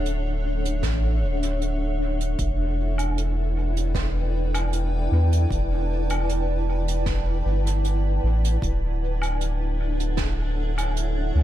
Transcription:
Already playing: D1 D4 A4 C#5 E5 F#5
0.06 closed hi-hat
0.65 closed hi-hat
0.83 A1, kick, snare, closed hi-hat
1.22 D1
1.43 closed hi-hat
1.61 closed hi-hat
2.20 closed hi-hat
2.39 E1 E4, kick, closed hi-hat
2.82 B4
2.98 closed hi-hat, low woodblock
3.13 D5 G5
3.18 closed hi-hat
3.77 closed hi-hat
3.95 kick, snare, closed hi-hat
4.21 A5
4.54 closed hi-hat, low woodblock
4.73 closed hi-hat
5.11 E2
5.33 closed hi-hat
5.51 E1, kick, closed hi-hat
6.10 closed hi-hat, low woodblock
6.29 closed hi-hat
6.88 closed hi-hat
7.06 kick, snare, closed hi-hat
7.45 G1
7.67 closed hi-hat
7.84 closed hi-hat
8.23 A1
8.44 closed hi-hat
8.62 D1 D4, kick, closed hi-hat
8.90 F#5
9.14 E5
9.22 A4, closed hi-hat, low woodblock
9.41 closed hi-hat
9.67 C#5
10.00 closed hi-hat
10.17 kick, snare, closed hi-hat
10.78 closed hi-hat, low woodblock
10.96 closed hi-hat
11.35 D2

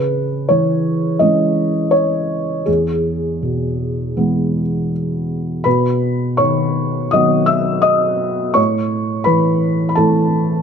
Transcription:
Already playing: C#3 B4
0.49 E3 C#5
1.19 E3 G#3 C#4 D#5
1.91 C#5
2.66 E2 G#4
3.42 B2
4.17 E3 G#3 B3
5.64 B2 B4 B5
6.37 D#3 C#5 C#6
7.11 D#3 F#3 B3 D#5 D#6
7.46 E5 E6
7.82 D#5 D#6
8.54 A2 C#5 C#6
9.24 E3 B4 B5
9.89 B5
9.95 E3 A3 E4 A4 A5

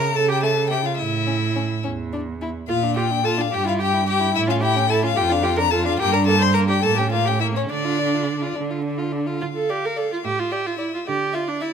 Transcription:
Already playing: A#4 A#5
0.15 C#3 A4 A5
0.28 G4 G5
0.43 A3 A4 A5
0.70 A3 G4 G5
0.84 F4 F5
0.98 A2 E4 E5
1.27 C#4
1.56 C#4
1.84 E2 C#4
2.13 D4
2.41 E4
2.68 A#2 F4 F5
2.83 D4
2.96 F4 G4 G5
3.11 D4
3.24 F4 A4 A5
3.37 D4 F4
3.41 F5
3.51 G2 G4 G5
3.65 E4 F4 F5
3.79 G4 G5
3.93 E4
4.06 G4 G5
4.20 E4
4.33 A2 E4 E5
4.47 C#4 F4 F5
4.61 E4 G4 G5
4.76 C#4
4.89 E4 A4 A5
5.02 C#4 F4 F5
5.16 F2 F4 G4 G5
5.29 D4 F4 F5
5.42 F4 G4 G5
5.57 D4 A#4 A#5
5.71 F4 A4 A5
5.84 D4 F4 F5
5.99 G2 A#3 G4 G5
6.12 D4 A#4 A#5
6.26 A#3 A4 A5
6.39 D4 C5 C6
6.54 A#3 A#4 A#5
6.68 D4 G4 G5
6.83 A2 A#3 A4 A5
6.96 C#4 G4 G5
7.10 A#3 F4 F5
7.25 C#4 G4 G5
7.39 A#3 E4 E5
7.54 C#4 C#5
7.69 D3 D4 D5
7.85 F4
7.99 D4
8.15 F4
8.27 D4
8.42 F4
8.56 D3 D4
8.70 F4
8.84 D4
8.98 F4
9.12 D4
9.27 F4
9.41 D3 F4 F5
9.56 A4
9.69 G4 D5
9.85 A#4
9.96 A4 D5
10.12 F4
10.24 A2 G4 E5
10.39 F4
10.51 G4 D5
10.66 F4
10.78 E4 D5
10.94 F4
11.07 D3 G4 D5
11.33 F4 E5
11.48 D4
11.61 E4 E5

